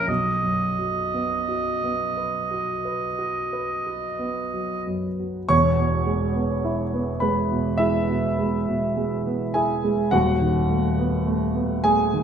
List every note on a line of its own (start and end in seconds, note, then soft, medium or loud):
0.00 0.11 E3 soft
0.00 0.11 C#4 soft
0.00 0.12 E4 soft
0.00 0.11 G4 soft
0.07 5.45 B1 soft
0.07 4.83 D#5 medium
0.43 1.00 F#2 soft
0.79 1.35 F#3 soft
1.14 1.69 B3 soft
1.49 2.03 F#4 soft
1.83 2.38 B3 soft
2.17 2.72 B4 soft
2.51 3.06 F#4 soft
2.85 3.39 B4 soft
3.19 3.73 F#4 soft
3.53 4.07 B4 soft
3.87 4.40 F#4 soft
4.19 4.73 B3 soft
4.54 5.07 F#3 soft
4.87 5.38 F#2 soft
5.19 5.50 F#3 soft
5.49 10.08 E1 medium
5.49 10.08 E2 medium
5.49 7.17 C#5 medium
5.49 7.21 C#6 loud
5.78 6.24 B2 soft
6.07 6.53 G#3 soft
6.35 6.81 B3 soft
6.65 7.10 E4 soft
6.93 7.39 B3 soft
7.20 7.68 G#3 soft
7.20 7.76 B4 medium
7.20 7.79 B5 medium
7.51 7.97 B2 soft
7.78 8.26 G#3 soft
7.78 9.50 E4 medium
7.78 9.54 E5 medium
8.08 8.55 B2 soft
8.39 8.85 G#3 soft
8.67 9.14 B2 soft
8.97 9.43 G#3 soft
9.26 9.72 B3 soft
9.54 10.01 E4 soft
9.54 10.08 G#4 medium
9.54 10.12 G#5 medium
9.84 10.13 G#3 soft
10.11 12.23 D#1 medium
10.11 12.23 D#2 medium
10.11 11.81 F#4 medium
10.11 11.84 F#5 medium
10.41 10.87 D#3 soft
10.70 11.15 A3 soft
10.99 11.44 B3 soft
11.27 11.73 A3 medium
11.55 12.02 B3 soft
11.84 12.23 A3 medium
11.84 12.23 G#4 medium
11.84 12.23 G#5 loud
12.13 12.23 D#3 soft